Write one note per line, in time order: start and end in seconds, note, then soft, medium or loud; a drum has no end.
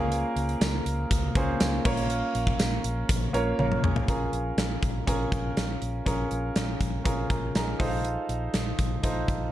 0.00 0.23 C#2 loud
0.00 0.77 A#3 loud
0.00 0.77 C#4 medium
0.00 0.77 F4 medium
0.00 0.78 G#4 medium
0.00 0.78 A#4 loud
0.00 1.37 C5 medium
0.00 1.87 F5 medium
0.12 closed hi-hat medium
0.36 0.54 C#2 loud
0.36 closed hi-hat medium
0.49 closed hi-hat soft
0.61 0.79 C#2 loud
0.61 snare loud
0.61 closed hi-hat loud
0.61 tambourine medium
0.86 1.04 C#2 loud
0.86 closed hi-hat medium
1.11 1.28 C#2 loud
1.11 kick medium
1.11 closed hi-hat loud
1.35 1.53 C#2 loud
1.35 1.83 A#3 medium
1.35 1.84 C#4 medium
1.35 1.84 F4 medium
1.35 1.86 G#4 medium
1.35 1.86 C5 medium
1.35 kick loud
1.35 closed hi-hat medium
1.60 1.78 C#2 loud
1.60 snare loud
1.60 closed hi-hat medium
1.60 tambourine medium
1.85 2.21 A#1 loud
1.85 2.75 A#3 loud
1.85 2.76 C#4 medium
1.85 2.76 F4 medium
1.85 2.76 A#4 medium
1.85 2.76 C#5 loud
1.85 kick loud
1.85 crash medium
1.97 closed hi-hat medium
2.10 closed hi-hat medium
2.35 2.53 A#1 loud
2.35 closed hi-hat medium
2.47 kick medium
2.59 2.77 A#1 loud
2.59 snare loud
2.59 closed hi-hat medium
2.59 tambourine medium
2.84 3.02 A#1 medium
2.84 closed hi-hat medium
3.09 3.27 A#1 loud
3.09 kick loud
3.09 closed hi-hat loud
3.33 3.51 A#1 loud
3.33 4.01 A#3 medium
3.33 4.01 C#4 medium
3.33 4.02 F4 medium
3.33 3.59 A#4 medium
3.33 3.58 C#5 loud
3.33 closed hi-hat medium
3.58 3.76 A#1 loud
3.58 3.82 C#5 medium
3.58 3.83 F5 medium
3.58 3.82 A#5 medium
3.58 high tom medium
3.72 mid tom medium
3.83 4.01 A#1 loud
3.83 4.07 G#4 medium
3.83 4.31 C#5 medium
3.83 mid tom loud
3.96 floor tom loud
4.08 4.26 A#1 medium
4.08 4.99 C#4 medium
4.08 4.99 F4 medium
4.08 4.99 G#4 medium
4.08 4.99 A#4 medium
4.08 kick medium
4.08 closed hi-hat medium
4.33 4.51 A#1 medium
4.33 closed hi-hat medium
4.57 4.75 A#1 medium
4.57 snare medium
4.57 closed hi-hat medium
4.83 5.00 A#1 medium
4.83 kick medium
4.83 closed hi-hat medium
5.07 5.25 A#1 medium
5.07 5.98 C#4 medium
5.07 5.98 F4 medium
5.07 5.98 G#4 medium
5.07 5.98 A#4 medium
5.07 kick medium
5.07 closed hi-hat medium
5.32 5.50 A#1 medium
5.32 kick loud
5.32 closed hi-hat medium
5.57 5.75 A#1 medium
5.57 snare loud
5.57 closed hi-hat medium
5.82 6.00 A#1 medium
5.82 closed hi-hat medium
6.06 6.24 A#1 medium
6.06 6.97 C#4 medium
6.06 6.97 F4 medium
6.06 6.97 G#4 medium
6.06 6.97 A#4 medium
6.06 kick medium
6.06 closed hi-hat medium
6.31 6.49 A#1 medium
6.31 closed hi-hat medium
6.56 6.74 A#1 loud
6.56 snare loud
6.56 closed hi-hat medium
6.81 6.99 A#1 medium
6.81 kick medium
6.81 closed hi-hat medium
7.04 7.23 A#1 loud
7.04 7.79 C#4 medium
7.04 7.29 F4 medium
7.04 7.30 G#4 medium
7.04 7.29 A#4 medium
7.04 kick medium
7.04 closed hi-hat loud
7.30 7.48 A#1 medium
7.30 7.54 F4 medium
7.30 7.54 A#4 medium
7.30 kick loud
7.30 closed hi-hat medium
7.55 7.73 A#1 medium
7.55 7.78 D#4 soft
7.55 8.02 G#4 medium
7.55 7.86 A#5 medium
7.55 snare loud
7.55 closed hi-hat medium
7.79 8.16 A#1 medium
7.79 8.70 D#4 medium
7.79 8.70 F4 medium
7.79 8.70 A4 medium
7.79 8.70 C5 medium
7.79 kick loud
7.79 open hi-hat medium
7.88 8.04 F5 medium
8.05 closed hi-hat medium
8.29 8.47 A#1 medium
8.29 closed hi-hat medium
8.53 8.72 A#1 medium
8.53 snare loud
8.53 closed hi-hat medium
8.79 8.97 A#1 medium
8.79 kick medium
8.79 closed hi-hat medium
9.03 9.22 A#1 medium
9.03 9.52 D#4 medium
9.03 9.52 F4 medium
9.03 9.52 A4 medium
9.03 9.52 C5 medium
9.03 kick medium
9.03 closed hi-hat medium
9.28 9.46 A#1 medium
9.28 kick loud
9.28 closed hi-hat medium